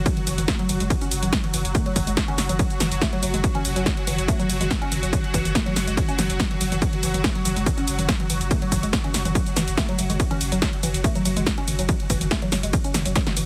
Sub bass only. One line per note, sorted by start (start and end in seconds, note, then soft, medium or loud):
0.27 0.37 F#1 loud
0.38 0.48 F#1 medium
0.69 0.80 F#1 loud
0.80 0.90 F#1 medium
1.11 1.22 F#1 loud
1.22 1.32 F#1 medium
1.54 1.64 F#1 loud
1.65 1.75 F#1 medium
1.96 2.06 F#1 loud
2.07 2.17 F#1 medium
2.38 2.49 F#1 loud
2.49 2.59 F#1 medium
2.80 2.91 F#1 loud
2.91 3.01 F#1 medium
3.23 3.33 F#1 loud
3.34 3.44 F#1 medium
3.65 3.75 F#1 loud
3.76 3.86 F#1 medium
4.07 4.18 F#1 loud
4.18 4.28 F#1 medium
4.49 4.60 F#1 loud
4.61 4.70 F#1 medium
4.92 5.02 F#1 loud
5.03 5.13 F#1 medium
5.34 5.45 F#1 loud
5.45 5.55 F#1 medium
5.76 5.87 F#1 loud
5.87 5.97 F#1 medium
6.19 6.29 F#1 loud
6.30 6.39 F#1 medium
6.61 6.71 F#1 loud
6.72 6.82 F#1 medium
7.03 7.13 F#1 loud
7.14 7.24 F#1 medium
7.45 7.56 F#1 loud
7.56 7.66 F#1 medium
7.87 7.98 F#1 loud
7.98 8.08 F#1 medium
8.30 8.40 F#1 loud
8.41 8.51 F#1 medium
8.72 8.82 F#1 loud
8.83 8.93 F#1 medium
9.14 9.24 F#1 loud
9.25 9.35 F#1 medium
9.56 9.67 F#1 loud
9.67 9.77 F#1 medium
9.99 10.09 F#1 loud
10.10 10.20 F#1 medium
10.41 10.51 F#1 loud
10.52 10.62 F#1 medium
10.83 10.94 F#1 loud
10.94 11.04 F#1 medium
11.25 11.36 F#1 loud
11.37 11.46 F#1 medium
11.68 11.78 F#1 loud
11.79 11.89 F#1 medium
12.10 12.20 F#1 loud
12.21 12.31 F#1 medium
12.52 12.63 F#1 loud
12.63 12.73 F#1 medium
12.94 13.05 F#1 loud
13.06 13.15 F#1 medium
13.37 13.46 F#1 loud